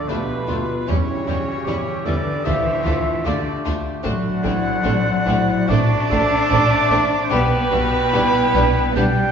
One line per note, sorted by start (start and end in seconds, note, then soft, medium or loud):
0.00 0.70 D3 medium
0.00 0.92 D3 medium
0.00 0.92 F3 soft
0.00 0.70 A3 medium
0.00 0.67 D4 soft
0.00 0.47 F4 soft
0.00 0.10 A4 medium
0.00 0.27 D5 soft
0.00 0.92 A5 medium
0.08 0.17 D2 medium
0.08 0.87 B2 medium
0.08 0.17 A3 medium
0.08 0.89 B3 medium
0.08 0.17 D4 medium
0.08 0.18 F4 medium
0.08 0.46 G4 medium
0.08 0.87 G4 medium
0.08 0.72 B4 medium
0.08 0.91 B4 medium
0.08 0.91 F5 medium
0.29 0.91 D5 medium
0.47 0.58 D2 medium
0.47 0.57 A3 medium
0.47 0.55 D4 medium
0.47 0.89 F4 medium
0.47 0.91 F4 soft
0.47 0.57 F4 medium
0.68 0.91 D4 soft
0.87 0.97 E2 medium
0.87 2.06 C#3 medium
0.87 2.46 E3 medium
0.87 2.49 E3 medium
0.87 2.42 G3 medium
0.87 0.97 G3 medium
0.87 0.96 C#4 medium
0.87 2.06 C#4 medium
0.87 1.26 E4 medium
0.87 0.96 E4 medium
0.87 2.07 G4 medium
0.87 2.05 C#5 medium
0.87 2.04 C#5 medium
1.07 2.05 C#4 soft
1.25 1.35 E2 medium
1.25 1.36 C#4 soft
1.25 1.35 E4 soft
1.25 1.67 F#4 medium
1.25 1.86 G4 medium
1.29 1.37 G3 medium
1.46 2.49 G5 medium
1.65 1.75 E2 medium
1.65 1.75 G3 medium
1.65 1.75 C#4 medium
1.65 1.75 E4 medium
1.65 2.07 G4 medium
1.65 2.49 C#5 medium
1.87 2.50 G4 medium
2.05 2.13 E2 medium
2.05 2.46 D3 medium
2.05 2.14 G3 medium
2.05 2.49 C#4 medium
2.05 2.15 C#4 medium
2.05 2.46 D4 medium
2.05 2.13 E4 medium
2.05 2.47 A4 medium
2.05 2.47 B4 medium
2.05 2.46 D5 medium
2.27 2.50 G3 soft
2.44 2.53 D2 medium
2.44 3.25 D3 medium
2.44 4.09 D3 medium
2.44 3.24 E3 medium
2.44 2.54 A3 medium
2.44 3.26 A3 medium
2.44 2.54 D4 medium
2.44 3.27 E4 medium
2.44 2.53 F4 medium
2.44 2.87 G4 medium
2.44 3.01 C5 medium
2.44 3.00 E5 loud
2.44 3.27 E5 medium
2.67 3.85 D4 soft
2.85 2.95 D2 medium
2.85 2.94 A3 medium
2.85 2.95 D4 medium
2.85 2.93 F4 medium
2.85 3.27 F4 medium
2.85 3.65 F4 medium
3.07 6.97 A5 medium
3.24 3.35 D2 medium
3.24 3.65 D3 medium
3.24 4.03 D3 medium
3.24 3.34 A3 medium
3.24 4.04 A3 medium
3.24 3.34 D4 medium
3.24 3.66 D4 medium
3.24 3.33 F4 medium
3.24 4.03 G4 medium
3.24 3.63 A4 medium
3.24 3.62 D5 medium
3.24 3.66 D5 medium
3.24 4.08 F5 medium
3.47 4.62 D5 medium
3.65 3.75 D2 medium
3.65 3.74 A3 medium
3.65 3.75 D4 medium
3.65 3.73 F4 medium
3.65 4.08 F4 medium
3.86 7.76 D4 medium
4.03 4.14 A1 medium
4.03 7.35 A2 medium
4.03 5.67 D3 medium
4.03 5.65 F#3 medium
4.03 4.12 A3 medium
4.03 5.67 A3 medium
4.03 4.12 C4 medium
4.03 4.12 D4 medium
4.03 4.45 F#4 medium
4.03 5.67 F#4 loud
4.03 5.69 D5 medium
4.03 5.65 F#5 medium
4.03 5.71 F#5 loud
4.24 5.45 A3 medium
4.43 4.53 A1 medium
4.43 4.51 A3 medium
4.43 4.53 C4 medium
4.43 4.52 D4 medium
4.43 4.84 E4 medium
4.43 5.24 C5 medium
4.63 6.29 D5 medium
4.82 4.93 A1 medium
4.82 4.92 A3 medium
4.82 4.92 C4 medium
4.82 5.27 D4 medium
4.82 4.91 D4 medium
4.82 6.49 C6 medium
5.04 6.69 A4 medium
5.25 5.35 A1 medium
5.25 5.34 A3 medium
5.25 5.35 C4 medium
5.25 5.33 D4 medium
5.25 5.70 E4 medium
5.25 6.09 C5 medium
5.46 5.88 A3 medium
5.68 5.79 A1 medium
5.68 7.28 D3 medium
5.68 7.34 F#3 medium
5.68 7.28 A3 medium
5.68 5.78 A3 medium
5.68 5.79 C4 medium
5.68 5.77 D4 medium
5.68 7.31 D4 loud
5.68 6.12 F#4 medium
5.68 7.26 D5 loud
5.68 7.32 D5 loud
5.68 7.29 A5 loud
5.68 7.31 D6 loud
5.89 7.08 A3 medium
6.10 6.19 A1 medium
6.10 6.19 A3 medium
6.10 6.19 C4 medium
6.10 6.19 D4 medium
6.10 7.05 A4 medium
6.10 6.88 C5 medium
6.50 6.59 A1 medium
6.50 6.59 A3 medium
6.50 6.59 C4 medium
6.50 6.59 D4 medium
6.50 7.34 C6 medium
6.90 6.99 A1 medium
6.90 6.99 A3 medium
6.90 6.98 C4 medium
6.90 6.98 D4 medium
7.10 7.34 A3 medium
7.25 7.32 C5 medium
7.29 7.40 B1 medium
7.29 8.94 B2 medium
7.29 8.92 B2 medium
7.29 8.96 G3 medium
7.29 7.39 G3 medium
7.29 8.92 B3 loud
7.29 7.38 B3 medium
7.29 7.37 D4 medium
7.29 7.73 G4 medium
7.29 8.95 B4 loud
7.29 8.93 B4 loud
7.29 8.94 G5 loud
7.29 8.96 B5 loud
7.51 8.73 G3 medium
7.71 7.80 B1 medium
7.71 7.81 G3 medium
7.71 7.80 B3 medium
7.71 7.79 D4 medium
7.71 8.14 F#4 medium
7.92 9.32 D5 medium
8.12 8.21 B1 medium
8.12 8.21 G3 medium
8.12 8.22 B3 medium
8.12 8.22 D4 medium
8.12 8.97 E4 medium
8.12 9.32 B5 medium
8.34 9.32 G4 medium
8.54 8.63 B1 medium
8.54 8.62 G3 medium
8.54 8.63 B3 medium
8.54 8.64 D4 medium
8.74 9.32 G3 medium
8.93 9.05 B1 medium
8.93 9.32 B2 medium
8.93 9.32 G3 medium
8.93 9.04 G3 medium
8.93 9.04 B3 medium
8.93 9.32 D4 medium
8.93 9.04 D4 medium
8.93 9.32 G4 loud
8.93 9.32 D5 medium
8.93 9.32 G5 medium
8.93 9.32 G5 loud
8.99 9.32 B2 medium
8.99 9.32 G3 medium
9.15 9.32 B3 medium